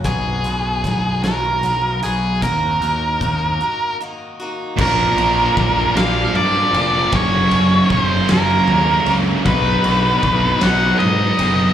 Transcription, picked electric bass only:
0.05 B1
0.45 B1
0.84 B1
1.23 B1
1.63 B1
2.03 B1
2.43 D#2
2.81 D#2
3.21 D#2
4.78 A#1
5.17 A#1
5.57 A#1
5.95 A#1
6.34 G2
6.73 F1
7.12 F#1
7.53 F#1
7.90 F#1
8.30 F#1
8.68 D#2
9.07 C#2
9.46 B1
9.85 B1
10.24 B1
10.63 B1
11.02 G#2
11.39 F#1

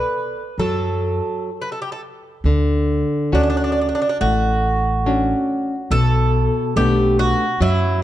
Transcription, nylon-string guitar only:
Already playing: A4 B4 D5
0.60 F#3
2.46 D3
3.32 C#4 D4 F#4
4.21 A3
5.06 C#4 D4 F#4
5.91 B2
6.77 A3 B3 D4
7.61 F#3

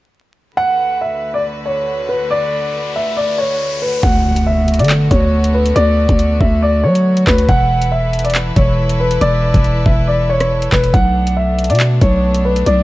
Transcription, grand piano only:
0.57 F#5
1.01 E5
1.34 D5
1.66 C#5
2.09 B4
2.31 D5
2.96 E5
3.17 D5
3.38 C#5
3.82 B4
4.03 F#5
4.47 E5
4.79 D5
5.11 C#5
5.54 B4
5.76 D5
6.41 E5
6.62 D5
6.84 C#5
7.27 B4
7.49 F#5
7.92 E5
8.24 D5
8.56 C#5
9.00 B4
9.21 D5
9.86 E5
10.08 D5
10.29 C#5
10.72 B4
10.94 F#5
11.37 E5
11.70 D5
12.01 C#5
12.45 B4
12.66 D5

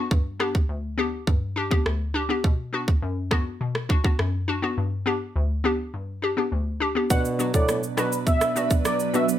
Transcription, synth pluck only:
0.11 G2
0.40 B3 D4 G4
0.69 D2
0.98 B3 D4 G4
1.27 G2
1.56 D4 G4
1.71 B3 D4 G4
1.86 D2
2.14 D4 G4
2.29 B3 D4 G4
2.44 B2
2.73 B3 D4 F#4
3.02 F#2
3.31 B3 D4 F#4
3.61 B2
3.89 D4 F#4
4.04 B3 D4 F#4
4.19 F#2
4.48 D4 F#4
4.62 B3 D4 F#4
4.78 G2
5.06 B3 D4 G4
5.36 D2
5.64 B3 D4 G4
5.94 G2
6.22 D4 G4
6.37 B3 D4 G4
6.52 D2
6.80 D4 G4
6.95 B3 D4 G4
7.39 B3 D4 F#4
7.97 B3 D4 F#4
8.55 B3 D4 F#4
9.14 B3 D4 F#4

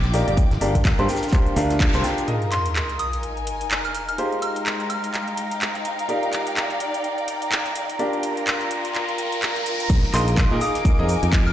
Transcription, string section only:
Already playing: F4 G5 D6
0.70 A#4
2.28 D#4
2.99 G#5
4.30 G#3 G5
4.58 F5
6.14 D5
7.99 F4
8.27 A#4
9.90 D#4
10.59 G#5

